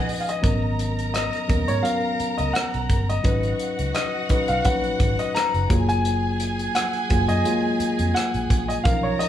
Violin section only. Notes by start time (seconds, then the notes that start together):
Already playing: B3 G#4 D#5
0.44 A#4 A#5
3.25 F#4 F#5
5.70 G#4 G#5
8.86 A#4 A#5